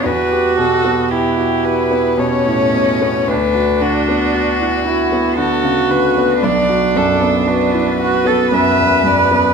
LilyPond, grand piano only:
\new Staff \with { instrumentName = "Grand piano" } { \time 3/4 \key b \minor \tempo 4 = 57 e,16 g'16 b,16 b16 g'16 fis'16 g'16 b16 b,16 a,16 b,16 b16 | d,16 fis'16 d16 b16 fis'16 e'16 fis'16 b16 d16 cis16 d16 b16 | b,,16 fis'16 fis,16 b16 fis'16 e'16 fis'16 b16 fis,16 e,16 fis,16 b16 | }